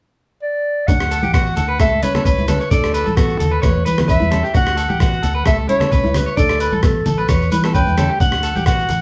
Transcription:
0.42 clarinet D5
0.87 fingered electric bass D2, steel-string acoustic guitar D4, clarinet F#5, muted clean electric guitar stroke, kick, shekere
1.00 cross-stick, shekere
1.11 clean electric guitar A4, closed hi-hat, shekere
1.23 fingered electric bass A1, clean electric guitar G4, high conga, shekere
1.34 steel-string acoustic guitar B3, clean electric guitar F#4, clarinet F#5, kick, cross-stick, shekere
1.47 shekere
1.57 fingered electric bass D2, clean electric guitar A4, closed hi-hat, low conga, shekere
1.68 clean electric guitar B4
1.80 fingered electric bass C#2, steel-string acoustic guitar A3, clean electric guitar A4, clarinet E5, kick, cross-stick, shekere
2.03 fingered electric bass C#3, clean electric guitar B4, clarinet C#5, closed hi-hat, high conga, shekere
2.15 steel-string acoustic guitar B3, clean electric guitar A4, cross-stick, low conga, shekere
2.25 fingered electric bass C#2, steel-string acoustic guitar C#4, clean electric guitar B4, kick, shekere
2.38 fingered electric bass C#2, steel-string acoustic guitar E4, high conga, shekere
2.48 steel-string acoustic guitar C#4, clean electric guitar A4, clarinet B4, cross-stick, closed hi-hat, low conga, shekere
2.60 clean electric guitar C#5, shekere
2.71 fingered electric bass D2, steel-string acoustic guitar D4, clarinet A4, clean electric guitar D5, kick, shekere
2.83 cross-stick, shekere
2.94 clean electric guitar B4, closed hi-hat, shekere
3.06 fingered electric bass A1, clean electric guitar A4, high conga, shekere
3.17 steel-string acoustic guitar B3, clean electric guitar F#4, clarinet A4, kick, cross-stick, shekere
3.30 shekere
3.39 fingered electric bass D#2, clean electric guitar A4, closed hi-hat, low conga, shekere
3.51 clean electric guitar B4
3.62 fingered electric bass E2, steel-string acoustic guitar A3, clarinet B4, clean electric guitar C#5, kick, cross-stick, shekere
3.85 fingered electric bass E3, clean electric guitar B4, clarinet B4, closed hi-hat, high conga, shekere
3.98 steel-string acoustic guitar B3, cross-stick, low conga, shekere
4.08 fingered electric bass E2, steel-string acoustic guitar C#4, clean electric guitar B4, clarinet E5, kick, shekere
4.20 fingered electric bass E2, steel-string acoustic guitar E4, high conga, shekere
4.31 steel-string acoustic guitar C#4, clean electric guitar A4, cross-stick, closed hi-hat, low conga
4.43 clean electric guitar G4, shekere
4.54 fingered electric bass D2, steel-string acoustic guitar D4, clean electric guitar F#4, clarinet F#5, kick, shekere
4.67 cross-stick, shekere
4.77 clean electric guitar A4, closed hi-hat, shekere
4.89 fingered electric bass A1, clean electric guitar G4, high conga, shekere
5.00 steel-string acoustic guitar B3, clean electric guitar F#4, clarinet F#5, kick, cross-stick, shekere
5.13 shekere
5.23 fingered electric bass D2, clean electric guitar A4, closed hi-hat, low conga, shekere
5.35 clean electric guitar B4
5.45 fingered electric bass C#2, steel-string acoustic guitar A3, clean electric guitar A4, clarinet E5, kick, cross-stick, shekere
5.69 fingered electric bass C#3, clean electric guitar E4, clarinet C#5, closed hi-hat, high conga
5.80 steel-string acoustic guitar B3, clean electric guitar A4, cross-stick, low conga, shekere
5.92 fingered electric bass C#2, steel-string acoustic guitar C#4, clean electric guitar B4, kick, shekere
6.04 fingered electric bass C#2, steel-string acoustic guitar E4, high conga, shekere
6.14 steel-string acoustic guitar C#4, clarinet B4, cross-stick, closed hi-hat, low conga, shekere
6.26 clean electric guitar C#5, shekere
6.37 fingered electric bass D2, steel-string acoustic guitar D4, clarinet A4, clean electric guitar D5, kick, shekere
6.49 cross-stick, shekere
6.60 clean electric guitar B4, closed hi-hat, shekere
6.72 fingered electric bass A1, clean electric guitar A4, high conga, shekere
6.83 steel-string acoustic guitar B3, clarinet A4, muted clean electric guitar stroke, kick, cross-stick, shekere
7.06 fingered electric bass A1, clean electric guitar A4, closed hi-hat, high conga, low conga, shekere
7.18 clean electric guitar B4
7.28 fingered electric bass E2, steel-string acoustic guitar E3, clarinet B4, clean electric guitar C#5, kick, cross-stick, shekere
7.42 shekere
7.52 fingered electric bass E3, clean electric guitar B4, closed hi-hat, high conga, shekere
7.64 steel-string acoustic guitar B3, clean electric guitar A4, cross-stick
7.74 fingered electric bass E2, steel-string acoustic guitar C#4, clean electric guitar B4, clarinet G5, kick, shekere
7.87 fingered electric bass E2, steel-string acoustic guitar E4, high conga, shekere
7.98 steel-string acoustic guitar C#4, clean electric guitar A4, cross-stick, closed hi-hat, low conga, shekere
8.10 clean electric guitar G4
8.20 fingered electric bass D2, steel-string acoustic guitar D4, clarinet F#5, muted clean electric guitar stroke, kick, shekere
8.32 cross-stick, shekere
8.43 clean electric guitar A4, closed hi-hat, shekere
8.55 fingered electric bass A1, clean electric guitar G4, high conga, shekere
8.66 steel-string acoustic guitar B3, clean electric guitar F#4, clarinet F#5, kick, cross-stick, shekere
8.79 shekere
8.89 fingered electric bass A1, muted clean electric guitar stroke, closed hi-hat, low conga, shekere

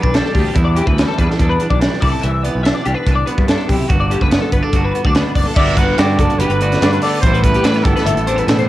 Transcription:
Already playing: clean electric guitar E2 E3 G3 D4 B4
0.02 fingered electric bass B1, clean electric guitar D4, kick
0.14 clean electric guitar G3 A4, snare, closed hi-hat
0.25 clean electric guitar A4, snare
0.34 fingered electric bass D2, clean electric guitar D4 G4, kick, open hi-hat
0.54 clean electric guitar E2 E4, fingered electric bass E2, kick, closed hi-hat
0.64 clean electric guitar D5
0.76 clean electric guitar E3 G4, closed hi-hat
0.86 fingered electric bass D2, clean electric guitar B4, kick
0.98 clean electric guitar G3, snare, closed hi-hat
1.08 clean electric guitar A4
1.18 fingered electric bass E2, clean electric guitar D4 B4, kick, closed hi-hat
1.29 clean electric guitar A4, snare
1.39 fingered electric bass E2, clean electric guitar D4, kick, closed hi-hat
1.49 clean electric guitar B4
1.60 clean electric guitar D4, closed hi-hat
1.70 fingered electric bass B1, clean electric guitar D5, kick
1.80 clean electric guitar G3 B4, snare, closed hi-hat
1.93 snare
2.01 fingered electric bass C2, clean electric guitar C3 E4 D5, kick, open hi-hat
2.11 clean electric guitar A4
2.22 fingered electric bass C2, clean electric guitar E3 E5, closed hi-hat
2.43 clean electric guitar B3 D5, closed hi-hat
2.55 fingered electric bass B1, clean electric guitar B4
2.63 clean electric guitar D4 E5, snare, closed hi-hat
2.74 clean electric guitar D5
2.85 fingered electric bass C2, clean electric guitar D4 G4, closed hi-hat
2.94 clean electric guitar B4
3.07 fingered electric bass C2, clean electric guitar D4, kick, closed hi-hat
3.15 clean electric guitar D5
3.26 clean electric guitar B3 B4, closed hi-hat
3.38 fingered electric bass G2, kick
3.48 clean electric guitar D4 A4, snare, closed hi-hat
3.58 clean electric guitar A4
3.68 fingered electric bass B1, clean electric guitar C3 E4 G4, kick, open hi-hat
3.88 fingered electric bass G1, clean electric guitar G2 F#4, kick, closed hi-hat
4.00 clean electric guitar D5
4.10 clean electric guitar D3 G4, closed hi-hat
4.21 fingered electric bass F#1, clean electric guitar B4, kick
4.31 clean electric guitar B3, snare, closed hi-hat
4.42 clean electric guitar A4
4.52 fingered electric bass G1, clean electric guitar B3 B4, kick, closed hi-hat
4.62 clean electric guitar D4 A4
4.73 fingered electric bass G1, clean electric guitar F#4, kick, closed hi-hat
4.84 clean electric guitar B4
4.95 clean electric guitar B3, closed hi-hat
5.04 fingered electric bass D2, clean electric guitar D4 D5, kick
5.15 clean electric guitar B3 B4, snare, closed hi-hat
5.35 fingered electric bass F#1, clean electric guitar D4 D5, kick, open hi-hat
5.46 clean electric guitar A4
5.55 fingered electric bass G1, clean electric guitar G2 D3 B3 D5, trumpet E5, kick, crash
5.59 clean electric guitar D4 F#4
5.67 closed hi-hat
5.77 clean electric guitar B4, trumpet F#5, kick, closed hi-hat
5.98 fingered electric bass G2, clean electric guitar D3 F#4 G4, trumpet D5, snare, closed hi-hat
6.18 fingered electric bass F#1, clean electric guitar D4 A4, kick, closed hi-hat
6.30 closed hi-hat
6.39 fingered electric bass F#1, clean electric guitar G4, trumpet B4, closed hi-hat
6.50 fingered electric bass G1, clean electric guitar B4, closed hi-hat
6.61 clean electric guitar D2 F#4 D5, closed hi-hat
6.72 snare, closed hi-hat
6.81 fingered electric bass G2, clean electric guitar D4 D5, snare, closed hi-hat
6.93 clean electric guitar B4, closed hi-hat
7.02 clean electric guitar B3 D5, trumpet A4, open hi-hat
7.21 fingered electric bass A1, clean electric guitar A2 C5, trumpet C5, kick, closed hi-hat
7.26 clean electric guitar E3 G3 B3 E4
7.34 clean electric guitar B4, closed hi-hat
7.43 clean electric guitar A4, trumpet B4, kick, closed hi-hat
7.54 clean electric guitar G4, closed hi-hat
7.64 fingered electric bass A2, clean electric guitar E3 D4 B4, snare, closed hi-hat
7.74 clean electric guitar E4, snare, closed hi-hat
7.83 fingered electric bass G1, clean electric guitar B3 G4, trumpet A4, kick, closed hi-hat
7.96 clean electric guitar B4, snare, closed hi-hat
8.05 fingered electric bass G1, clean electric guitar E5, closed hi-hat
8.16 fingered electric bass A1, closed hi-hat
8.27 clean electric guitar E2 D4 C5, closed hi-hat
8.36 clean electric guitar E4 B4, closed hi-hat
8.47 fingered electric bass A2, clean electric guitar B2, snare, closed hi-hat
8.59 clean electric guitar C5, closed hi-hat

